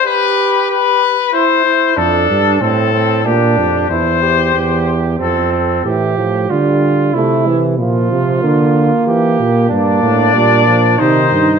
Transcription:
<<
  \new Staff \with { instrumentName = "Trumpet" } { \time 3/4 \key f \major \tempo 4 = 93 b'4 b'4 c''4 | a'4 a'4 g'4 | c''4. r8 a'8 a'8 | r2. |
r2. | \key g \minor d''2 c''4 | }
  \new Staff \with { instrumentName = "Flugelhorn" } { \time 3/4 \key f \major g'4. r8 e'8 e'8 | d'4 c'8 c'8 d'4 | e'8 g'4. c'4 | g'4 f'4 e'4 |
f'2 g'4 | \key g \minor d'2 ees'4 | }
  \new Staff \with { instrumentName = "Trombone" } { \clef bass \time 3/4 \key f \major r2. | r2. | r2. | e8 f8 g4 a8 e8 |
f4 bes2 | \key g \minor bes4 g8 f8 ees4 | }
  \new Staff \with { instrumentName = "Bass trombone" } { \clef bass \time 3/4 \key f \major r2. | f,8 g,8 a,4 bes,8 f,8 | e,4 e,4 f,4 | a,8 a,8 d4 c4 |
bes,8 c8 d4 e8 bes,8 | \key g \minor g,8 a,8 bes,4 c8 g,8 | }
>>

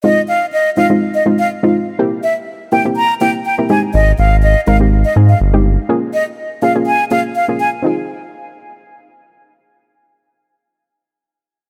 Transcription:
<<
  \new Staff \with { instrumentName = "Flute" } { \time 4/4 \key f \minor \tempo 4 = 123 ees''8 f''8 ees''8 f''16 r8 ees''16 r16 f''16 r4 | r8 e''16 r8. g''16 r16 bes''8 g''16 r16 g''16 r16 aes''16 r16 | ees''8 f''8 ees''8 f''16 r8 ees''16 r16 f''16 r4 | r8 ees''16 r8. f''16 r16 aes''8 f''16 r16 f''16 r16 aes''16 r16 |
r1 | r1 | }
  \new Staff \with { instrumentName = "Synth pluck" } { \time 4/4 \key f \minor <aes c' ees' f'>4 r8 <aes c' ees' f'>16 <aes c' ees' f'>8 r16 <aes c' ees' f'>8 r16 <aes c' ees' f'>8 r16 | <bes c' e' g'>4 r8 <bes c' e' g'>16 <bes c' e' g'>8 r16 <bes c' e' g'>8 r16 <bes c' e' g'>16 <aes c' ees' g'>8~ | <aes c' ees' g'>4 r8 <aes c' ees' bes'>16 <aes c' ees' g'>8 r16 <aes c' ees' aes'>8 r16 <aes c' ees' g'>8 r16 | <bes des' f' aes'>4 r8 <bes des' f' aes'>16 <bes des' f' aes'>8 r16 <bes des' f' aes'>8 r16 <bes des' f' aes'>8 r16 |
<c' ees' f' aes'>1~ | <c' ees' f' aes'>1 | }
  \new Staff \with { instrumentName = "Analog synth bass" } { \clef bass \time 4/4 \key f \minor r1 | r1 | aes,,8 aes,,4 aes,,4 aes,8 g,,4 | r1 |
r1 | r1 | }
>>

